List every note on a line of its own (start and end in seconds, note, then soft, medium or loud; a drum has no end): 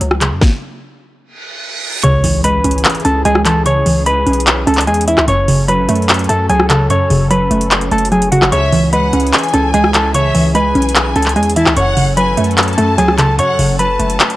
0.00 0.33 C#2 loud
0.00 1.02 F#3 medium
0.00 0.82 A3 medium
0.00 closed hi-hat medium
0.11 cross-stick medium
0.21 1.22 C#3 medium
0.21 clap medium
0.21 closed hi-hat medium
0.31 0.41 F#2 medium
0.41 kick loud
0.41 snare medium
1.22 reverse cymbal medium
2.03 2.23 C#2 loud
2.03 3.05 C#3 medium
2.03 5.25 E3 medium
2.03 11.73 C#4 medium
2.03 5.25 G#4 medium
2.03 2.42 C#5 medium
2.03 2.42 C#6 loud
2.03 closed hi-hat medium
2.03 impact medium
2.24 2.63 C#2 loud
2.24 3.25 E3 medium
2.24 open hi-hat medium
2.44 3.24 G#3 medium
2.44 3.02 B4 medium
2.44 3.01 B5 medium
2.44 closed hi-hat medium
2.64 2.84 C#2 loud
2.64 3.04 C#4 medium
2.64 closed hi-hat medium
2.71 closed hi-hat medium
2.78 closed hi-hat soft
2.85 clap loud
2.85 closed hi-hat medium
2.90 closed hi-hat medium
2.95 closed hi-hat soft
3.00 closed hi-hat soft
3.05 3.24 C#2 loud
3.05 4.06 C#4 medium
3.05 3.22 A4 medium
3.05 3.21 A5 medium
3.05 closed hi-hat medium
3.25 3.84 C#2 loud
3.25 4.05 G#3 loud
3.25 3.42 G#4 medium
3.25 3.42 G#5 loud
3.25 closed hi-hat medium
3.35 cross-stick medium
3.45 3.85 E3 medium
3.45 3.62 A4 medium
3.45 3.62 A5 medium
3.45 clap medium
3.45 closed hi-hat medium
3.66 4.67 C#3 medium
3.66 4.04 C#5 medium
3.66 4.04 C#6 loud
3.66 closed hi-hat medium
3.86 4.25 C#2 loud
3.86 4.87 E3 medium
3.86 open hi-hat medium
4.06 4.86 G#3 medium
4.06 4.64 B4 medium
4.06 4.63 B5 loud
4.06 closed hi-hat medium
4.26 4.65 B1 loud
4.26 4.66 C#4 medium
4.26 closed hi-hat soft
4.33 closed hi-hat medium
4.40 closed hi-hat medium
4.47 clap loud
4.47 closed hi-hat medium
4.67 4.89 C#2 loud
4.67 5.28 C#4 medium
4.67 4.84 A4 medium
4.67 4.84 A5 medium
4.67 closed hi-hat medium
4.74 clap medium
4.74 closed hi-hat medium
4.81 closed hi-hat medium
4.87 5.16 E2 loud
4.87 5.28 G#3 loud
4.87 5.04 G#4 medium
4.87 5.04 G#5 medium
4.87 closed hi-hat soft
4.94 closed hi-hat medium
5.01 closed hi-hat medium
5.08 5.28 E3 medium
5.08 5.25 E4 medium
5.08 5.24 E5 medium
5.08 closed hi-hat medium
5.18 5.27 C#2 loud
5.18 cross-stick medium
5.18 clap medium
5.28 5.47 F#1 loud
5.28 6.29 F#2 medium
5.28 8.49 F#3 medium
5.28 8.49 A4 medium
5.28 5.67 C#5 medium
5.28 5.66 C#6 loud
5.28 closed hi-hat medium
5.48 5.80 F#1 loud
5.48 6.50 C#3 medium
5.48 open hi-hat medium
5.68 6.48 F#3 medium
5.68 6.26 B4 medium
5.68 6.26 B5 medium
5.68 closed hi-hat medium
5.79 5.88 G#1 loud
5.89 6.28 F#2 loud
5.89 6.28 A3 medium
5.89 closed hi-hat medium
5.95 closed hi-hat medium
6.02 closed hi-hat soft
6.09 clap loud
6.09 closed hi-hat medium
6.14 closed hi-hat medium
6.19 closed hi-hat soft
6.24 closed hi-hat soft
6.29 6.49 F#2 loud
6.29 7.31 A3 medium
6.29 6.46 A4 medium
6.29 6.46 A5 medium
6.29 closed hi-hat medium
6.50 6.92 C#2 loud
6.50 7.29 F#3 loud
6.50 6.66 G#4 medium
6.50 6.66 G#5 loud
6.50 closed hi-hat medium
6.60 cross-stick medium
6.70 7.09 C#3 medium
6.70 6.87 A4 medium
6.70 6.86 A5 medium
6.70 clap loud
6.70 closed hi-hat medium
6.90 7.91 F#2 medium
6.90 7.09 F#2 loud
6.90 7.29 C#5 medium
6.90 7.28 C#6 loud
6.90 closed hi-hat medium
7.10 7.49 F#1 loud
7.10 8.12 C#3 medium
7.10 open hi-hat medium
7.31 8.11 F#3 medium
7.31 7.88 B4 medium
7.31 7.88 B5 medium
7.31 closed hi-hat medium
7.51 7.90 F#1 loud
7.51 7.90 A3 medium
7.51 closed hi-hat medium
7.61 closed hi-hat medium
7.71 clap loud
7.71 closed hi-hat medium
7.81 closed hi-hat medium
7.91 8.40 F#1 loud
7.91 8.52 A3 medium
7.91 8.09 A4 medium
7.91 8.08 A5 medium
7.91 closed hi-hat soft
7.98 closed hi-hat medium
8.05 closed hi-hat medium
8.12 8.52 F#3 loud
8.12 8.29 G#4 medium
8.12 8.28 G#5 medium
8.12 closed hi-hat soft
8.22 closed hi-hat medium
8.32 8.51 C#3 medium
8.32 8.49 F#4 medium
8.32 8.48 F#5 medium
8.32 closed hi-hat medium
8.42 8.52 F#1 loud
8.42 cross-stick loud
8.42 clap loud
8.52 8.72 C#2 loud
8.52 9.54 C#3 medium
8.52 11.73 E3 medium
8.52 11.73 G#4 medium
8.52 8.91 C#5 medium
8.52 8.90 E5 loud
8.52 8.90 C#6 loud
8.52 closed hi-hat medium
8.72 9.11 C#2 loud
8.72 9.74 E3 medium
8.72 open hi-hat medium
8.93 9.73 G#3 medium
8.93 9.50 B4 medium
8.93 9.31 F#5 loud
8.93 9.50 B5 medium
8.93 closed hi-hat medium
9.13 9.33 C#2 loud
9.13 9.52 C#4 medium
9.13 closed hi-hat medium
9.20 closed hi-hat medium
9.27 closed hi-hat soft
9.33 10.10 G#5 medium
9.33 clap loud
9.33 closed hi-hat medium
9.38 closed hi-hat medium
9.43 closed hi-hat soft
9.48 closed hi-hat soft
9.54 9.73 C#2 loud
9.54 10.55 C#4 medium
9.54 9.70 A4 medium
9.54 9.70 A5 medium
9.54 closed hi-hat medium
9.74 10.32 C#2 loud
9.74 10.54 G#3 loud
9.74 9.91 G#4 medium
9.74 9.90 G#5 loud
9.74 closed hi-hat medium
9.84 cross-stick medium
9.94 10.33 E3 medium
9.94 10.11 A4 medium
9.94 10.11 A5 loud
9.94 clap loud
9.94 closed hi-hat medium
10.14 11.16 C#3 medium
10.14 10.53 C#5 medium
10.14 10.53 E5 loud
10.14 10.53 C#6 loud
10.14 closed hi-hat medium
10.35 10.74 C#2 loud
10.35 11.36 E3 medium
10.35 open hi-hat medium
10.55 11.35 G#3 medium
10.55 11.13 B4 medium
10.55 11.52 G#5 medium
10.55 11.12 B5 medium
10.55 closed hi-hat medium
10.75 11.14 B1 loud
10.75 11.15 C#4 medium
10.75 closed hi-hat soft
10.82 closed hi-hat medium
10.89 closed hi-hat medium
10.95 clap loud
10.95 closed hi-hat medium
11.16 11.38 C#2 loud
11.16 11.77 C#4 medium
11.16 11.33 A4 medium
11.16 11.32 A5 medium
11.16 closed hi-hat medium
11.22 clap medium
11.22 closed hi-hat medium
11.29 closed hi-hat medium
11.36 11.65 E2 loud
11.36 11.77 G#3 loud
11.36 11.53 G#4 medium
11.36 11.52 G#5 medium
11.36 closed hi-hat soft
11.43 closed hi-hat medium
11.49 closed hi-hat medium
11.56 11.77 E3 medium
11.56 11.73 E4 medium
11.56 11.73 E5 medium
11.56 11.75 A5 medium
11.56 closed hi-hat medium
11.66 11.76 C#2 loud
11.66 cross-stick medium
11.66 clap loud
11.76 11.96 F#1 loud
11.76 12.78 F#2 loud
11.76 14.37 F#3 medium
11.76 14.37 C#4 medium
11.76 14.37 A4 medium
11.76 12.15 C#5 medium
11.76 12.15 F#5 loud
11.76 12.15 C#6 loud
11.76 closed hi-hat medium
11.97 12.29 F#1 loud
11.97 12.98 C#3 medium
11.97 open hi-hat medium
12.17 12.97 F#3 medium
12.17 12.75 B4 medium
12.17 12.55 G#5 loud
12.17 12.74 B5 medium
12.17 closed hi-hat medium
12.27 12.37 G#1 loud
12.37 12.76 F#2 loud
12.37 12.77 A3 medium
12.37 closed hi-hat medium
12.44 closed hi-hat medium
12.51 closed hi-hat soft
12.58 13.35 A5 medium
12.58 clap loud
12.58 closed hi-hat medium
12.63 closed hi-hat medium
12.68 closed hi-hat soft
12.73 closed hi-hat soft
12.78 12.97 F#2 loud
12.78 13.79 A3 medium
12.78 12.95 A4 medium
12.78 12.94 A5 medium
12.78 closed hi-hat medium
12.98 13.40 C#2 loud
12.98 13.78 F#3 medium
12.98 13.15 G#4 medium
12.98 13.15 G#5 loud
12.98 closed hi-hat medium
13.08 cross-stick medium
13.18 13.58 C#3 medium
13.18 13.35 A4 medium
13.18 13.35 A5 medium
13.18 clap medium
13.18 closed hi-hat medium
13.39 14.37 F#2 medium
13.39 13.58 F#2 loud
13.39 13.77 C#5 medium
13.39 13.77 F#5 loud
13.39 13.77 C#6 loud
13.39 closed hi-hat medium
13.59 13.98 F#1 loud
13.59 14.37 C#3 medium
13.59 open hi-hat medium
13.79 14.37 F#3 medium
13.79 14.37 B4 medium
13.79 14.37 A5 medium
13.79 14.36 B5 medium
13.79 closed hi-hat medium
13.99 14.19 F#1 loud
13.99 14.37 A3 medium
13.99 closed hi-hat medium
14.10 closed hi-hat medium
14.20 clap loud
14.20 closed hi-hat medium
14.30 closed hi-hat medium